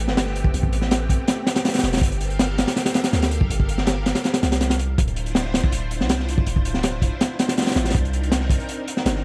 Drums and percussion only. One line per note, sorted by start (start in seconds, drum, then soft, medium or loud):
0.08 snare medium
0.17 snare loud
0.17 closed hi-hat medium
0.26 snare medium
0.36 closed hi-hat medium
0.44 kick loud
0.54 closed hi-hat medium
0.63 kick medium
0.73 closed hi-hat medium
0.81 snare medium
0.91 snare loud
0.91 closed hi-hat medium
1.09 kick medium
1.09 closed hi-hat medium
1.28 snare loud
1.28 closed hi-hat medium
1.47 snare loud
1.47 closed hi-hat medium
1.56 snare loud
1.56 closed hi-hat medium
1.65 snare loud
1.65 closed hi-hat medium
1.68 snare medium
1.68 closed hi-hat medium
1.74 snare medium
1.74 closed hi-hat medium
1.79 snare medium
1.79 closed hi-hat medium
1.83 snare loud
1.83 closed hi-hat medium
1.93 snare medium
1.93 closed hi-hat medium
1.97 snare medium
1.97 closed hi-hat medium
2.01 kick loud
2.01 closed hi-hat medium
2.12 closed hi-hat soft
2.21 closed hi-hat medium
2.30 closed hi-hat soft
2.39 snare loud
2.39 closed hi-hat medium
2.49 snare soft
2.58 snare loud
2.58 closed hi-hat medium
2.67 snare loud
2.67 closed hi-hat medium
2.76 snare loud
2.76 closed hi-hat medium
2.85 snare loud
2.85 closed hi-hat medium
2.94 snare loud
2.94 closed hi-hat medium
3.04 snare loud
3.04 closed hi-hat medium
3.13 snare medium
3.13 closed hi-hat medium
3.22 snare loud
3.22 closed hi-hat medium
3.31 closed hi-hat medium
3.41 kick medium
3.51 closed hi-hat medium
3.60 kick medium
3.69 closed hi-hat medium
3.78 snare medium
3.87 snare loud
3.87 closed hi-hat medium
4.06 snare loud
4.06 closed hi-hat medium
4.15 snare loud
4.15 closed hi-hat medium
4.24 snare loud
4.24 closed hi-hat medium
4.34 snare loud
4.34 closed hi-hat medium
4.43 snare loud
4.43 closed hi-hat medium
4.52 snare loud
4.52 closed hi-hat medium
4.61 snare loud
4.61 closed hi-hat medium
4.70 snare loud
4.70 closed hi-hat medium
4.79 closed hi-hat medium
4.98 kick loud
4.98 closed hi-hat medium
5.08 closed hi-hat soft
5.16 closed hi-hat medium
5.26 closed hi-hat soft
5.35 snare loud
5.35 closed hi-hat medium
5.45 snare soft
5.54 snare loud
5.54 closed hi-hat medium
5.64 kick loud
5.72 closed hi-hat medium
5.91 closed hi-hat medium
6.01 snare medium
6.09 snare loud
6.09 closed hi-hat medium
6.20 snare medium
6.29 closed hi-hat medium
6.38 kick loud
6.46 closed hi-hat medium
6.56 kick medium
6.65 closed hi-hat medium
6.74 snare medium
6.83 snare loud
6.83 closed hi-hat loud
7.02 kick medium
7.02 closed hi-hat medium
7.21 snare loud
7.21 closed hi-hat medium
7.39 snare loud
7.39 closed hi-hat medium
7.48 snare loud
7.48 closed hi-hat medium
7.57 snare loud
7.57 closed hi-hat medium
7.62 snare medium
7.62 closed hi-hat medium
7.67 snare medium
7.67 closed hi-hat medium
7.71 snare medium
7.71 closed hi-hat medium
7.76 snare loud
7.76 closed hi-hat medium
7.85 snare medium
7.85 closed hi-hat medium
7.90 snare medium
7.90 closed hi-hat medium
7.95 kick loud
7.95 closed hi-hat medium
8.05 closed hi-hat soft
8.13 closed hi-hat medium
8.23 closed hi-hat soft
8.32 snare loud
8.32 closed hi-hat medium
8.41 snare soft
8.50 kick loud
8.50 closed hi-hat medium
8.60 closed hi-hat soft
8.69 closed hi-hat medium
8.88 closed hi-hat medium
8.97 snare medium
9.06 snare loud
9.06 closed hi-hat medium
9.16 snare soft